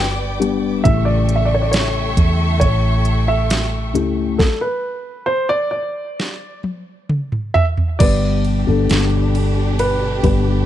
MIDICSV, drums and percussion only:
0, 0, Header, 1, 2, 480
1, 0, Start_track
1, 0, Key_signature, 1, "major"
1, 0, Tempo, 884956
1, 460, Time_signature, 4, 2, 24, 8
1, 2383, Tempo, 899550
1, 5726, End_track
2, 0, Start_track
2, 0, Title_t, "Drums"
2, 227, Note_on_c, 9, 42, 69
2, 281, Note_off_c, 9, 42, 0
2, 462, Note_on_c, 9, 36, 89
2, 462, Note_on_c, 9, 42, 79
2, 516, Note_off_c, 9, 36, 0
2, 517, Note_off_c, 9, 42, 0
2, 698, Note_on_c, 9, 42, 60
2, 752, Note_off_c, 9, 42, 0
2, 937, Note_on_c, 9, 42, 76
2, 945, Note_on_c, 9, 38, 107
2, 992, Note_off_c, 9, 42, 0
2, 999, Note_off_c, 9, 38, 0
2, 1177, Note_on_c, 9, 36, 88
2, 1178, Note_on_c, 9, 42, 68
2, 1231, Note_off_c, 9, 36, 0
2, 1232, Note_off_c, 9, 42, 0
2, 1417, Note_on_c, 9, 36, 87
2, 1417, Note_on_c, 9, 42, 79
2, 1472, Note_off_c, 9, 36, 0
2, 1472, Note_off_c, 9, 42, 0
2, 1654, Note_on_c, 9, 42, 57
2, 1709, Note_off_c, 9, 42, 0
2, 1900, Note_on_c, 9, 42, 86
2, 1904, Note_on_c, 9, 38, 103
2, 1955, Note_off_c, 9, 42, 0
2, 1958, Note_off_c, 9, 38, 0
2, 2144, Note_on_c, 9, 42, 66
2, 2198, Note_off_c, 9, 42, 0
2, 2383, Note_on_c, 9, 36, 93
2, 2388, Note_on_c, 9, 38, 77
2, 2437, Note_off_c, 9, 36, 0
2, 2441, Note_off_c, 9, 38, 0
2, 3345, Note_on_c, 9, 38, 57
2, 3398, Note_off_c, 9, 38, 0
2, 3580, Note_on_c, 9, 48, 60
2, 3634, Note_off_c, 9, 48, 0
2, 3824, Note_on_c, 9, 47, 88
2, 3877, Note_off_c, 9, 47, 0
2, 3945, Note_on_c, 9, 45, 72
2, 3999, Note_off_c, 9, 45, 0
2, 4068, Note_on_c, 9, 43, 100
2, 4122, Note_off_c, 9, 43, 0
2, 4187, Note_on_c, 9, 43, 82
2, 4240, Note_off_c, 9, 43, 0
2, 4308, Note_on_c, 9, 49, 84
2, 4308, Note_on_c, 9, 51, 64
2, 4309, Note_on_c, 9, 36, 103
2, 4361, Note_off_c, 9, 49, 0
2, 4361, Note_off_c, 9, 51, 0
2, 4362, Note_off_c, 9, 36, 0
2, 4545, Note_on_c, 9, 51, 54
2, 4599, Note_off_c, 9, 51, 0
2, 4785, Note_on_c, 9, 51, 75
2, 4792, Note_on_c, 9, 38, 107
2, 4838, Note_off_c, 9, 51, 0
2, 4845, Note_off_c, 9, 38, 0
2, 5027, Note_on_c, 9, 51, 64
2, 5081, Note_off_c, 9, 51, 0
2, 5264, Note_on_c, 9, 51, 72
2, 5317, Note_off_c, 9, 51, 0
2, 5501, Note_on_c, 9, 36, 77
2, 5501, Note_on_c, 9, 51, 50
2, 5554, Note_off_c, 9, 36, 0
2, 5554, Note_off_c, 9, 51, 0
2, 5726, End_track
0, 0, End_of_file